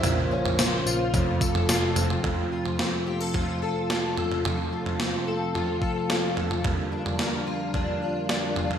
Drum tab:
TB |x---x-x-x-x-x-x-|----------------|----------------|----------------|
SD |----o-------o---|----o-------o---|----o-------o---|----o-------o---|
FT |o--o----o--o--oo|o--o----o-----oo|o--o----o-----oo|o--o----o-----oo|
BD |--------o-o-----|o-------o-------|----------o-----|o-------o-------|